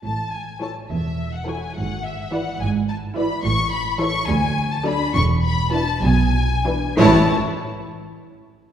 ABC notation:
X:1
M:6/8
L:1/16
Q:3/8=69
K:A
V:1 name="Violin section"
a2 g2 a2 e3 f g2 | f2 e2 f2 g2 a2 b2 | c'2 b2 c'2 g3 a b2 | c'2 b2 a2 g6 |
a2 z8 z2 |]
V:2 name="Violin section"
z4 [Ac]2 z4 [Ac]2 | z4 [Bd]2 z4 [Bd]2 | z4 [Ac]2 z4 [Ad]2 | z4 [EB]2 z4 [EB]2 |
[Ec]2 z8 z2 |]
V:3 name="Viola section"
z4 [E,E]2 z4 [E,E]2 | z4 [E,E]2 z4 [E,E]2 | z4 [E,E]2 z4 [F,D]2 | z4 [E,D]2 z4 [E,D]2 |
[E,E]2 z8 z2 |]
V:4 name="Cello section" clef=bass
A,,6 E,,6 | G,,6 G,,6 | A,,6 D,,6 | E,,6 B,,6 |
A,,2 z8 z2 |]
V:5 name="Double bass section" clef=bass
A,,,6 E,,,6 | G,,,6 G,,,6 | A,,,6 D,,6 | E,,,6 B,,,6 |
A,,,2 z8 z2 |]